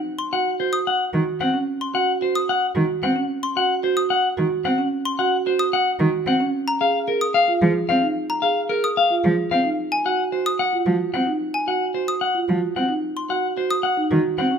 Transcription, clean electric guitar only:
\new Staff \with { instrumentName = "Clean electric guitar" } { \time 3/4 \key ges \lydian \tempo 4 = 111 r8 ges''16 r16 c''16 r16 ges''16 r8. ges''16 r16 | r8 ges''16 r16 c''16 r16 ges''16 r8. ges''16 r16 | r8 ges''16 r16 c''16 r16 ges''16 r8. ges''16 r16 | r8 ges''16 r16 c''16 r16 ges''16 r8. ges''16 r16 |
r8 f''16 r16 bes'16 r16 f''16 r8. f''16 r16 | r8 f''16 r16 bes'16 r16 f''16 r8. f''16 r16 | r8 ges''16 r16 c''16 r16 ges''16 r8. ges''16 r16 | r8 ges''16 r16 c''16 r16 ges''16 r8. ges''16 r16 |
r8 ges''16 r16 c''16 r16 ges''16 r8. ges''16 r16 | }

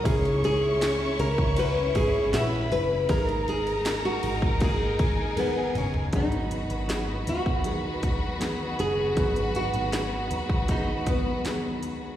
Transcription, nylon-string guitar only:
\new Staff \with { instrumentName = "Nylon-string guitar" } { \time 4/4 \key gis \minor \tempo 4 = 79 gis'8 gis'4 ais'8 b'8 gis'8 e'8 b'8 | ais'8 gis'8. fis'8. gis'4 b8 cis'8 | dis'4. fis'2 gis'8~ | gis'8 fis'4. dis'8 b4 r8 | }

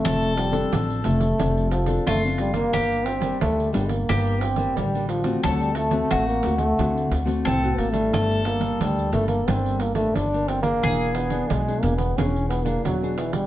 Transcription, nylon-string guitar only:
\new Staff \with { instrumentName = "Nylon-string guitar" } { \time 4/4 \key g \minor \tempo 4 = 89 << { <c' d' a'>8. <c' d' a'>8. <c' d' a'>16 r16 <c' d' a'>8 r16 <c' d' a'>8 <c' d' a'>8 <g bes d'>16~ | <g bes d'>8. <g bes d'>8. <g bes d'>16 r16 <g bes d'>8 r16 <g bes d'>8 <g bes d'>8 <a c' fis'>16~ | <a c' fis'>8. <a c' fis'>8. <a c' fis'>16 r16 <a c' fis'>8. <a c' fis'>8 <a c' fis'>8 <g d'>16~ | <g d'>8. <g bes d'>8. <g bes d'>16 r16 <g bes d'>8 r16 <g bes d'>8 <g bes d'>8 <d' aes'>16~ |
<d' aes'>8. <b d' gis'>8 <b d' gis'>8. <b gis'>8. <b d' gis'>8 <b d' gis'>8. | } \\ { f4 f4 f4 f4 | g,4 d4 g,4 d4 | d4 r4 d4 a,4 | g,4 d4 g,4 d4 |
e4 b,4 e4 b,4 | } >> }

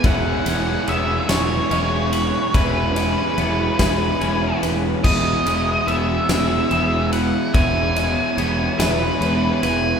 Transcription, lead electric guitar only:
\new Staff \with { instrumentName = "Lead electric guitar" } { \time 6/8 \key e \major \tempo 4. = 48 fis''4 e''8 cis''4. | b'2~ b'8 r8 | dis''4 e''4. fis''8 | gis''4. b'4 gis''8 | }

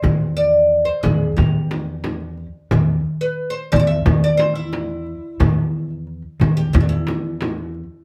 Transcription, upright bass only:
\new Staff \with { instrumentName = "Upright bass" } { \clef bass \time 4/4 \tempo 4 = 89 e,4. e,8 e,2 | e,8 r4 e,8 e,2 | e,4. e,8 e,2 | }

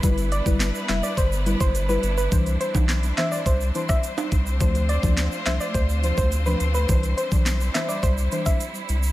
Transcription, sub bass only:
\new Staff \with { instrumentName = "Sub bass" } { \clef bass \time 4/4 \key c \major \tempo 4 = 105 g,,8. g,,8 r16 f,,16 r16 g,,8. g,,8. g,,8 | c,8 r16 b,,8. r8 c,8 r4 c,8 | d,8. d,8 r16 c,16 r16 d,8. d,8. d,8 | c,8 r16 b,,8. r8 c,8 r4 c,8 | }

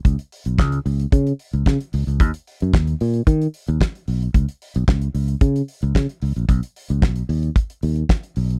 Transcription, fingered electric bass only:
\new Staff \with { instrumentName = "Fingered electric bass" } { \clef bass \time 4/4 \key dis \phrygian \tempo 4 = 112 cis,16 r8 b,,16 cis,8 cis,8 cis8 r16 cis,16 cis16 r16 cis,16 cis,16 | dis,16 r8 fis,16 dis,8 ais,8 dis8 r16 dis,16 r8 b,,8 | cis,16 r8 b,,16 cis,8 cis,8 cis8 r16 cis,16 cis16 r16 cis,16 ais,,16 | b,,16 r8 cis,16 b,,8 dis,8 r8 dis,8 r8 b,,8 | }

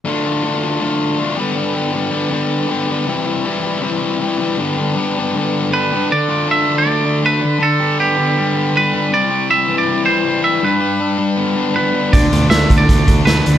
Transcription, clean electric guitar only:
\new Staff \with { instrumentName = "Clean electric guitar" } { \time 4/4 \key g \mixolydian \tempo 4 = 159 r1 | r1 | r1 | r2. b'4 |
d''4 e''8. d''4~ d''16 b'4 | a'4 g'2 b'4 | d''4 e''8. d''8. c''4 e''8 | b'4. r4. b'4 |
d''4 e''8. d''4~ d''16 b'4 | }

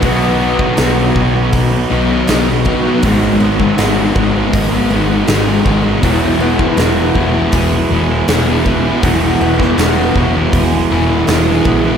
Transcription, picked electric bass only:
\new Staff \with { instrumentName = "Picked electric bass" } { \clef bass \time 4/4 \key e \lydian \tempo 4 = 80 b,,4 b,,8 b,,8 b,,8 b,,8 b,,4 | gis,,8 gis,,8 gis,,8 gis,,8 gis,,8 gis,,8 gis,,8 gis,,8 | e,,4 e,,8 e,,8 e,,8 e,,8 e,,4 | e,,8 e,,8 e,,8 e,,8 e,,8 e,,8 e,,8 ais,,8 | }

